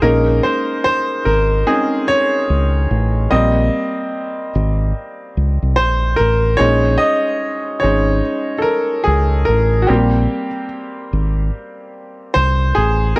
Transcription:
0.02 0.39 A#1 loud
0.02 1.65 G#3 medium
0.02 3.27 A#3 soft
0.02 1.66 C#4 soft
0.02 1.66 D#4 medium
0.02 0.40 A#4 medium
0.43 0.81 C5 medium
0.84 1.27 C5 loud
1.25 1.63 G#1 medium
1.25 1.68 A#4 medium
1.67 2.04 G#3 soft
1.67 2.04 C4 soft
1.67 2.04 C#4 soft
1.67 2.04 D#4 medium
1.67 2.09 G#4 medium
2.08 3.35 C#5 loud
2.50 2.86 C#2 medium
2.91 3.27 A1 medium
3.30 3.68 A#1 loud
3.30 4.50 G3 medium
3.30 4.50 A#3 soft
3.30 4.50 C4 medium
3.30 4.50 D#5 medium
4.55 4.92 G#1 loud
5.37 5.59 C#2 medium
5.62 5.78 C2 medium
5.76 6.15 A#1 medium
5.76 6.15 C5 loud
6.16 6.56 A1 medium
6.16 6.60 A#4 medium
6.57 6.97 A#1 loud
6.57 7.78 G#3 medium
6.57 7.79 C#4 soft
6.57 7.79 D#4 medium
6.57 7.79 C5 soft
6.57 7.01 C#5 loud
6.98 7.77 D#5 medium
7.80 8.20 G#3 soft
7.80 8.20 C#4 soft
7.80 8.20 D#4 soft
7.80 8.20 C5 soft
7.80 8.54 C#5 medium
7.84 8.20 G#1 medium
8.58 8.64 A4 medium
8.58 9.06 A#4 medium
9.04 9.44 C#2 medium
9.04 9.47 G#4 medium
9.45 9.85 A1 medium
9.45 9.83 A#4 medium
9.82 9.88 F#4 medium
9.87 10.26 A#1 loud
9.87 10.46 G3 medium
9.87 10.47 A#3 soft
9.87 10.47 C4 medium
9.87 10.66 G4 medium
11.13 11.49 G#1 medium
12.34 12.72 C2 medium
12.34 12.73 C5 loud
12.75 13.13 A1 loud
12.75 13.14 G#4 medium
13.16 13.20 G#3 medium
13.16 13.20 A#4 medium

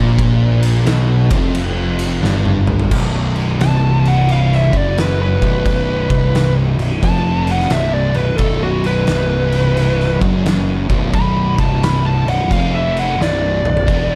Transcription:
0.00 0.83 A#1 loud
0.00 0.85 A#2 loud
0.19 kick loud
0.19 ride loud
0.63 ride medium
0.86 1.28 B1 medium
0.86 1.30 B2 loud
0.86 snare loud
0.86 ride loud
1.30 2.19 F1 loud
1.30 2.21 F2 loud
1.30 kick loud
1.30 ride medium
1.55 ride loud
1.99 ride medium
2.22 2.88 G1 medium
2.22 2.90 G2 loud
2.22 snare medium
2.45 high tom medium
2.67 mid tom medium
2.79 floor tom medium
2.91 3.56 B0 medium
2.91 3.59 B1 loud
2.91 kick loud
2.91 crash loud
2.91 crash medium
3.36 crash medium
3.59 4.69 C1 medium
3.59 4.71 C2 loud
3.59 4.05 A5 loud
3.59 snare loud
3.59 crash medium
4.05 4.29 F#5 medium
4.05 crash medium
4.29 4.52 F5 loud
4.29 crash medium
4.52 4.76 E5 medium
4.52 snare soft
4.72 5.38 F#1 loud
4.72 5.40 F#2 loud
4.72 kick loud
4.72 crash medium
4.77 4.98 D5 medium
4.98 5.21 B4 medium
4.98 snare loud
4.98 crash medium
5.22 6.54 B4 medium
5.41 6.06 B0 medium
5.41 6.09 B1 loud
5.41 kick loud
5.41 crash medium
5.66 kick loud
5.66 crash medium
6.10 6.75 C1 loud
6.10 6.77 C2 medium
6.10 kick loud
6.10 crash medium
6.35 snare loud
6.35 crash medium
6.77 7.00 B0 medium
6.77 6.97 B1 medium
6.77 crash medium
7.02 7.67 F1 loud
7.02 7.69 F2 loud
7.02 7.48 A5 loud
7.02 kick loud
7.02 crash medium
7.47 crash medium
7.51 7.72 F#5 medium
7.60 snare soft
7.69 8.12 C1 loud
7.69 8.14 C2 loud
7.69 7.94 E5 medium
7.69 snare loud
7.69 crash medium
7.94 8.16 D5 medium
8.14 8.37 B0 medium
8.14 8.35 B1 medium
8.14 8.37 B4 medium
8.14 crash medium
8.37 9.04 B0 loud
8.37 9.06 B1 loud
8.37 8.61 A4 medium
8.37 kick loud
8.37 crash medium
8.63 8.85 F#4 medium
8.84 10.19 B4 loud
8.84 crash medium
9.07 10.17 C1 loud
9.07 10.19 C2 loud
9.07 snare loud
9.07 crash medium
9.52 crash medium
9.77 crash medium
10.00 snare soft
10.20 10.86 F#1 loud
10.20 10.88 F#2 loud
10.20 kick loud
10.20 crash medium
10.46 snare loud
10.46 crash medium
10.89 11.54 B0 medium
10.89 11.57 B1 loud
10.89 kick loud
10.89 crash medium
11.13 11.58 B5 loud
11.13 kick loud
11.13 crash medium
11.57 12.23 C1 loud
11.57 12.25 C2 medium
11.57 11.82 A5 medium
11.57 kick loud
11.57 crash medium
11.83 12.05 B5 medium
11.83 snare loud
11.83 crash medium
12.05 12.27 A5 medium
12.26 12.48 B0 medium
12.26 12.46 B1 medium
12.26 12.51 F#5 medium
12.26 crash medium
12.49 13.15 F1 loud
12.49 13.17 F2 loud
12.49 12.73 F5 loud
12.49 kick loud
12.49 crash medium
12.75 12.96 E5 medium
12.97 13.20 F#5 medium
12.97 crash medium
13.17 13.60 C1 medium
13.17 13.61 C2 loud
13.17 snare medium
13.22 14.15 D5 loud
13.62 13.86 B0 medium
13.62 13.82 B1 medium
13.62 mid tom medium
13.77 floor tom medium
13.87 14.15 E1 medium
13.87 14.15 E2 loud
13.87 kick loud
13.87 crash medium

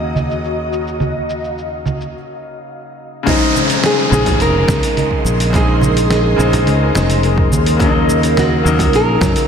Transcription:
0.00 2.14 D#2 medium
0.00 2.12 C#3 medium
0.00 2.13 F#3 medium
0.00 2.15 A#3 medium
0.00 2.16 D#4 medium
0.00 2.11 F#4 medium
0.00 0.98 D#5 medium
0.15 low conga medium
0.15 cabasa medium
0.31 cabasa soft
0.44 cabasa soft
0.73 cabasa medium
0.87 cabasa soft
1.00 low conga medium
1.00 cabasa soft
1.29 cabasa medium
1.44 cabasa soft
1.58 cabasa soft
1.86 low conga medium
1.86 cabasa medium
2.01 cabasa soft
3.23 4.07 C#3 medium
3.23 4.08 G#3 medium
3.23 7.76 G#4 medium
3.23 9.48 A#4 medium
3.23 7.76 D#5 medium
3.23 7.76 C6 medium
3.23 kick loud
3.23 open hi-hat soft
3.23 downlifter medium
3.23 low conga medium
3.28 4.09 C4 medium
3.28 3.86 D#4 medium
3.28 4.10 D#4 medium
3.28 cabasa soft
3.56 high conga medium
3.56 cabasa medium
3.70 open hi-hat medium
3.70 cabasa soft
3.84 4.12 G#4 loud
3.84 snare medium
3.84 open hi-hat soft
3.84 cabasa soft
4.10 4.40 A#1 loud
4.10 4.28 C#3 medium
4.10 4.29 G#3 medium
4.10 4.30 C4 medium
4.10 4.30 D#4 loud
4.10 4.41 G#4 loud
4.10 low conga medium
4.10 cabasa medium
4.26 kick loud
4.26 open hi-hat medium
4.26 low conga loud
4.26 cabasa soft
4.40 4.63 F1 medium
4.40 5.55 A#4 loud
4.40 open hi-hat soft
4.40 cabasa soft
4.68 4.80 C#2 medium
4.68 kick loud
4.68 snare medium
4.68 low conga medium
4.68 cabasa medium
4.83 open hi-hat medium
4.83 cabasa soft
4.97 open hi-hat soft
4.97 low conga medium
4.97 cabasa soft
5.11 kick medium
5.25 6.34 A#1 medium
5.25 high conga medium
5.25 cabasa medium
5.40 open hi-hat medium
5.40 cabasa soft
5.50 6.33 C#3 medium
5.50 6.34 G#3 medium
5.50 kick loud
5.50 open hi-hat soft
5.50 low conga medium
5.55 6.36 C4 medium
5.55 6.37 D#4 medium
5.55 6.64 G#4 medium
5.55 cabasa soft
5.81 high conga medium
5.81 low conga medium
5.81 cabasa medium
5.97 open hi-hat medium
5.97 cabasa soft
6.10 snare medium
6.10 open hi-hat soft
6.10 cabasa soft
6.36 6.66 A#1 loud
6.36 6.55 C#3 medium
6.36 6.56 G#3 medium
6.36 6.56 C4 medium
6.36 6.57 D#4 loud
6.36 cabasa medium
6.53 open hi-hat medium
6.53 low conga loud
6.53 cabasa soft
6.66 6.89 C#2 medium
6.66 open hi-hat medium
6.66 low conga medium
6.66 cabasa soft
6.95 7.47 F1 medium
6.95 snare medium
6.95 low conga medium
6.95 cabasa medium
7.10 open hi-hat medium
7.10 cabasa soft
7.23 open hi-hat soft
7.23 cabasa soft
7.38 kick loud
7.52 8.61 D#2 medium
7.52 low conga medium
7.52 cabasa medium
7.66 open hi-hat medium
7.66 cabasa soft
7.77 8.60 C#3 medium
7.77 8.61 F#3 medium
7.77 kick loud
7.77 open hi-hat soft
7.77 low conga medium
7.81 8.62 A#3 medium
7.81 8.39 D#4 medium
7.81 8.64 D#4 medium
7.81 9.48 F#4 medium
7.81 9.48 D#6 medium
7.81 cabasa soft
8.08 high conga medium
8.08 cabasa medium
8.23 open hi-hat medium
8.23 cabasa soft
8.37 8.96 F#4 medium
8.37 snare medium
8.37 open hi-hat soft
8.37 low conga medium
8.37 cabasa soft
8.63 8.93 D#2 medium
8.63 8.81 C#3 medium
8.63 8.82 F#3 medium
8.63 8.83 A#3 medium
8.63 8.83 D#4 loud
8.63 cabasa medium
8.79 kick loud
8.79 open hi-hat medium
8.79 low conga loud
8.79 cabasa soft
8.93 9.16 A#1 medium
8.93 9.48 A#4 medium
8.93 open hi-hat soft
8.93 cabasa soft
9.21 9.33 F#2 medium
9.21 kick loud
9.21 snare medium
9.21 low conga medium
9.21 cabasa medium
9.36 open hi-hat medium
9.36 cabasa soft

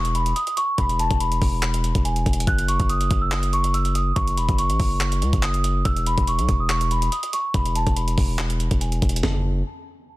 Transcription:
0.00 0.33 E1 loud
0.00 0.12 C#6 medium
0.05 closed hi-hat medium
0.15 0.33 B5 medium
0.15 closed hi-hat medium
0.26 closed hi-hat medium
0.36 0.54 D#6 medium
0.36 closed hi-hat medium
0.47 closed hi-hat medium
0.57 0.76 C#6 medium
0.57 closed hi-hat medium
0.78 1.09 E1 loud
0.78 0.97 B5 loud
0.78 kick loud
0.78 closed hi-hat medium
0.89 closed hi-hat medium
0.99 1.18 A5 medium
0.99 closed hi-hat medium
1.11 1.40 E1 loud
1.11 kick medium
1.11 closed hi-hat soft
1.20 2.01 B5 medium
1.20 closed hi-hat medium
1.32 closed hi-hat medium
1.42 1.93 E1 loud
1.42 kick loud
1.42 open hi-hat medium
1.63 clap loud
1.63 closed hi-hat medium
1.74 closed hi-hat medium
1.84 closed hi-hat medium
1.95 2.25 E1 loud
1.95 kick loud
1.95 closed hi-hat medium
2.05 2.45 G#5 medium
2.05 closed hi-hat medium
2.16 closed hi-hat medium
2.26 2.46 E1 loud
2.26 kick medium
2.26 closed hi-hat soft
2.33 closed hi-hat medium
2.40 closed hi-hat medium
2.47 2.78 F#1 loud
2.47 2.66 F#6 loud
2.47 kick loud
2.47 closed hi-hat medium
2.58 closed hi-hat medium
2.68 2.87 C#6 medium
2.68 closed hi-hat medium
2.80 3.09 F#1 loud
2.80 kick medium
2.80 closed hi-hat medium
2.89 3.20 D#6 medium
2.89 closed hi-hat medium
3.01 closed hi-hat medium
3.11 4.12 F#1 loud
3.11 kick loud
3.11 closed hi-hat medium
3.22 3.30 E6 medium
3.32 clap loud
3.32 closed hi-hat medium
3.43 closed hi-hat medium
3.53 3.72 C#6 medium
3.53 closed hi-hat medium
3.64 closed hi-hat medium
3.74 3.93 E6 medium
3.74 closed hi-hat medium
3.85 closed hi-hat medium
3.95 4.14 D#6 medium
3.95 closed hi-hat medium
4.16 4.39 F#1 loud
4.16 4.35 C#6 loud
4.16 kick loud
4.16 closed hi-hat medium
4.27 closed hi-hat medium
4.37 4.48 E1 loud
4.37 4.56 B5 medium
4.37 closed hi-hat medium
4.49 4.71 F#1 loud
4.49 kick medium
4.49 closed hi-hat medium
4.58 5.39 C#6 medium
4.58 closed hi-hat medium
4.70 4.79 A1 loud
4.70 closed hi-hat medium
4.80 5.23 F#1 loud
4.80 kick loud
4.80 open hi-hat medium
5.01 clap loud
5.01 closed hi-hat medium
5.12 closed hi-hat medium
5.22 5.33 C#2 loud
5.22 closed hi-hat medium
5.33 5.83 F#1 loud
5.33 kick medium
5.33 closed hi-hat medium
5.43 5.83 D#6 medium
5.43 clap loud
5.43 closed hi-hat medium
5.54 closed hi-hat medium
5.64 closed hi-hat medium
5.85 6.16 E1 loud
5.85 6.04 E6 loud
5.85 kick loud
5.85 closed hi-hat medium
5.96 closed hi-hat medium
6.06 6.25 B5 medium
6.06 closed hi-hat medium
6.18 6.40 E1 loud
6.18 kick medium
6.18 closed hi-hat medium
6.27 6.58 C#6 medium
6.27 closed hi-hat medium
6.39 6.48 B1 loud
6.39 closed hi-hat medium
6.49 7.10 E1 loud
6.49 kick loud
6.49 closed hi-hat medium
6.60 6.69 D#6 medium
6.70 6.88 C#6 loud
6.70 clap loud
6.70 closed hi-hat medium
6.81 closed hi-hat medium
6.91 7.10 B5 medium
6.91 closed hi-hat medium
7.02 closed hi-hat medium
7.12 7.30 D#6 medium
7.12 closed hi-hat medium
7.23 closed hi-hat medium
7.33 7.52 C#6 medium
7.33 closed hi-hat medium
7.54 7.85 E1 loud
7.54 7.73 B5 loud
7.54 kick loud
7.54 closed hi-hat medium
7.66 closed hi-hat medium
7.75 7.94 A5 loud
7.75 closed hi-hat medium
7.87 8.16 E1 loud
7.87 kick medium
7.87 closed hi-hat medium
7.96 8.77 B5 medium
7.96 closed hi-hat medium
8.08 closed hi-hat medium
8.18 8.69 E1 loud
8.18 kick loud
8.18 open hi-hat medium
8.39 clap loud
8.39 closed hi-hat medium
8.50 closed hi-hat medium
8.60 closed hi-hat medium
8.71 9.01 E1 loud
8.71 kick medium
8.71 closed hi-hat medium
8.81 9.21 G#5 medium
8.81 closed hi-hat medium
8.92 closed hi-hat medium
9.02 9.22 E1 loud
9.02 kick medium
9.02 closed hi-hat medium
9.09 closed hi-hat medium
9.16 closed hi-hat medium
9.23 9.63 F#1 loud
9.23 9.43 A5 medium
9.23 snare loud
9.23 floor tom loud

